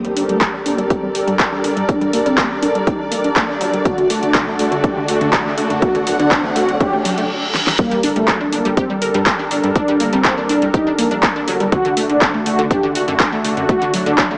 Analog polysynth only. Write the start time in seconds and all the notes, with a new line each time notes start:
Already playing: A#3
0.29 A3
0.66 A#3
0.90 C4
1.89 D4
2.26 C4
2.62 D4
2.87 D#4
3.85 F#4
4.23 D4
4.59 F#4
4.84 G4
5.82 F#4
6.19 D4
6.56 F#4
6.81 G4
7.79 A#3
8.16 A3
8.53 A#3
8.77 C4
9.76 D4
10.13 C4
10.49 D4
10.74 D#4
11.72 F#4
12.10 D4
12.46 F#4
12.71 G4
13.69 F#4
14.06 D4